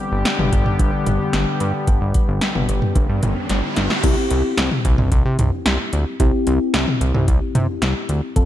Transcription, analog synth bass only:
0.12 0.24 G1 loud
0.39 0.51 G1 loud
0.53 0.65 G1 loud
0.79 0.91 G1 loud
1.06 1.19 G1 medium
1.33 1.46 G1 loud
1.61 1.73 G2 loud
1.87 2.00 G1 loud
2.01 2.13 G1 loud
2.28 2.40 G1 loud
2.55 2.67 G1 loud
2.69 2.81 G1 loud
2.95 3.08 G1 medium
3.09 3.21 G2 loud
3.23 3.35 G1 loud
3.50 3.62 G1 loud
3.77 3.89 G1 loud
4.04 4.16 C2 loud
4.31 4.43 C2 loud
4.58 4.70 C2 loud
4.85 4.97 C2 loud
4.98 5.10 C2 loud
5.12 5.24 C2 loud
5.25 5.37 C3 medium
5.39 5.51 C2 medium
5.66 5.78 C2 loud
5.93 6.05 D2 medium
6.20 6.32 C2 loud
6.47 6.59 C2 loud
6.74 6.86 C2 loud
7.01 7.13 C2 loud
7.14 7.27 C2 loud
7.28 7.40 C2 loud
7.55 7.67 C3 loud
7.82 7.94 C2 loud
8.09 8.21 D2 loud
8.36 8.45 F1 loud

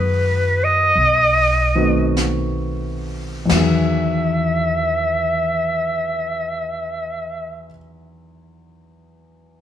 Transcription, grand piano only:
0.00 0.92 D#3 soft
0.00 0.94 F#3 soft
0.00 0.95 G#3 soft
0.00 0.97 B3 soft
0.00 0.98 F#4 medium
0.00 0.96 A#4 soft
1.75 3.49 D#3 soft
1.75 3.50 A3 soft
1.75 3.50 B3 soft
1.75 3.50 C4 soft
1.75 3.50 F#4 medium
3.46 7.64 E2 soft
3.46 7.67 E3 soft
3.52 7.72 D#3 soft
3.52 7.70 F#3 soft
3.57 7.75 G#4 medium

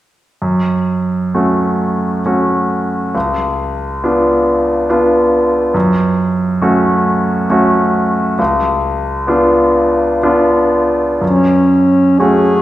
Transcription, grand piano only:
0.42 1.31 F#2 soft
1.34 2.21 A3 soft
1.34 2.21 C#4 soft
1.34 2.21 F#4 soft
2.25 3.11 A3 soft
2.25 3.11 C#4 soft
2.25 3.12 F#4 soft
3.15 3.99 C#2 soft
4.04 4.86 B3 soft
4.04 4.86 D4 soft
4.04 4.86 F4 soft
4.89 5.71 B3 soft
4.89 5.71 D4 soft
4.89 5.71 F4 soft
5.74 6.59 F#2 soft
6.62 7.46 A3 soft
6.62 7.46 C#4 soft
6.62 7.46 F#4 soft
7.50 8.35 A3 soft
7.50 8.35 C#4 soft
7.50 8.35 F#4 soft
8.39 9.26 C#2 soft
9.27 10.18 B3 soft
9.27 10.18 D4 soft
9.27 10.19 F4 soft
10.23 11.18 B3 soft
10.23 11.18 D4 soft
10.23 11.18 F4 soft
11.21 12.17 F#2 soft
12.20 12.62 A3 soft
12.20 12.62 C#4 soft
12.20 12.62 F#4 soft

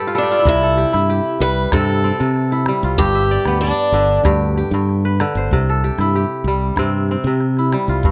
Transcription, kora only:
0.00 0.51 G2 medium
0.00 0.23 G4 medium
0.00 0.14 A4 medium
0.00 0.53 B4 medium
0.00 0.38 D5 medium
0.00 0.13 E5 medium
0.07 0.31 F4 medium
0.15 0.51 G3 medium
0.15 0.62 A4 medium
0.23 0.77 G4 medium
0.31 0.99 F4 medium
0.39 0.93 E4 medium
0.47 1.72 C3 medium
0.63 1.95 A4 medium
0.77 1.09 G4 medium
0.93 2.50 E4 medium
1.10 2.51 G4 medium
1.41 2.67 G3 medium
1.73 2.19 C3 medium
1.73 2.04 C4 medium
2.04 3.53 C4 medium
2.20 3.03 C3 medium
2.52 4.09 E4 medium
2.68 3.03 G3 medium
2.84 3.21 F4 medium
2.98 4.24 G2 medium
3.15 4.18 E5 medium
3.31 3.63 D5 medium
3.47 5.34 B3 medium
3.63 4.74 D5 medium
3.93 5.19 D3 medium
4.25 4.72 G2 medium
4.25 4.57 G4 medium
4.57 5.84 G4 medium
4.74 5.56 G2 medium
5.05 5.59 B4 medium
5.21 5.56 D3 medium
5.37 6.56 C5 medium
5.53 6.78 C3 medium
5.69 7.01 A4 medium
5.84 6.15 G4 medium
6.00 7.57 E4 medium
6.16 7.57 G4 medium
6.48 7.72 G3 medium
6.79 7.26 C3 medium
6.79 7.11 C4 medium
7.11 8.12 C4 medium
7.27 8.09 C3 medium
7.59 8.12 E4 medium
7.73 8.09 G3 medium
7.89 8.12 F4 medium
8.05 8.12 G2 medium

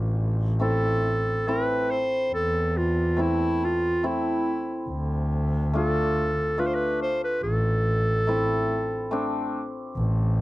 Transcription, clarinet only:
0.62 1.49 A4 medium
1.48 1.65 A#4 medium
1.65 1.93 B4 medium
1.91 2.34 C5 loud
2.34 2.79 A4 medium
2.77 3.22 F4 medium
3.21 3.66 E4 medium
3.65 4.08 F4 medium
4.06 4.90 E4 medium
5.77 6.61 A4 medium
6.59 6.68 B4 medium
6.67 6.76 C5 medium
6.75 7.02 B4 medium
7.02 7.22 C5 medium
7.24 7.43 B4 medium
7.43 9.51 A4 medium

